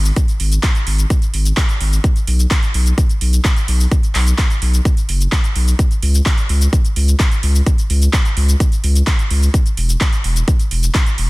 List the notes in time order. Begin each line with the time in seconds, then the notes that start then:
Already playing: G#1
0.05 cabasa
0.16 kick, closed hi-hat, cabasa
0.28 closed hi-hat, cabasa
0.40 G#1, open hi-hat
0.52 closed hi-hat, cabasa
0.63 kick, clap, closed hi-hat, cabasa
0.75 closed hi-hat, cabasa
0.87 G#1, open hi-hat
0.98 closed hi-hat, cabasa
1.10 kick, closed hi-hat, cabasa
1.22 closed hi-hat, cabasa
1.34 G#1, open hi-hat
1.45 closed hi-hat, cabasa
1.57 kick, clap, closed hi-hat, cabasa
1.69 closed hi-hat, cabasa
1.81 G#1, open hi-hat
1.93 cabasa
2.04 kick, closed hi-hat, cabasa
2.16 closed hi-hat, cabasa
2.27 B1, open hi-hat
2.39 closed hi-hat, cabasa
2.51 kick, clap, closed hi-hat, cabasa
2.63 closed hi-hat, cabasa
2.74 B1, open hi-hat
2.86 closed hi-hat, cabasa
2.98 kick, closed hi-hat, cabasa
3.09 closed hi-hat, cabasa
3.21 B1, open hi-hat
3.33 closed hi-hat, cabasa
3.45 kick, clap, closed hi-hat, cabasa
3.56 closed hi-hat, cabasa
3.68 B1, open hi-hat
3.80 cabasa
3.92 kick, closed hi-hat, cabasa
4.03 closed hi-hat, cabasa
4.15 B1, clap, open hi-hat
4.27 closed hi-hat, cabasa
4.38 kick, clap, closed hi-hat, cabasa
4.50 closed hi-hat, cabasa
4.62 B1, open hi-hat
4.74 closed hi-hat, cabasa
4.85 kick, closed hi-hat, cabasa
4.97 closed hi-hat, cabasa
5.09 F#1, open hi-hat
5.21 closed hi-hat, cabasa
5.32 kick, clap, closed hi-hat, cabasa
5.44 closed hi-hat, cabasa
5.56 B1, open hi-hat
5.68 cabasa
5.79 kick, closed hi-hat, cabasa
5.91 closed hi-hat, cabasa
6.02 C#2, open hi-hat
6.14 closed hi-hat, cabasa
6.26 kick, clap, closed hi-hat, cabasa
6.38 closed hi-hat, cabasa
6.49 C#2, open hi-hat
6.61 closed hi-hat, cabasa
6.73 kick, closed hi-hat, cabasa
6.85 closed hi-hat, cabasa
6.96 C#2, open hi-hat
7.08 closed hi-hat, cabasa
7.20 kick, clap, closed hi-hat, cabasa
7.31 closed hi-hat, cabasa
7.43 C#2, open hi-hat
7.55 cabasa
7.66 kick, closed hi-hat, cabasa
7.78 closed hi-hat, cabasa
7.90 C#2, open hi-hat
8.02 closed hi-hat, cabasa
8.13 kick, clap, closed hi-hat, cabasa
8.25 closed hi-hat, cabasa
8.37 C#2, open hi-hat
8.48 closed hi-hat, cabasa
8.60 kick, closed hi-hat, cabasa
8.72 closed hi-hat, cabasa
8.84 C#2, open hi-hat
8.95 closed hi-hat, cabasa
9.07 kick, clap, closed hi-hat, cabasa
9.19 closed hi-hat, cabasa
9.30 C#2, open hi-hat
9.43 cabasa
9.54 kick, closed hi-hat, cabasa
9.66 closed hi-hat, cabasa
9.77 E1, open hi-hat
9.89 closed hi-hat, cabasa
10.01 kick, clap, closed hi-hat, cabasa
10.13 closed hi-hat, cabasa
10.24 E1, open hi-hat
10.36 closed hi-hat, cabasa
10.48 kick, closed hi-hat, cabasa
10.59 closed hi-hat, cabasa
10.71 E1, open hi-hat
10.83 closed hi-hat, cabasa
10.95 kick, clap, closed hi-hat, cabasa
11.06 closed hi-hat, cabasa
11.18 E1, open hi-hat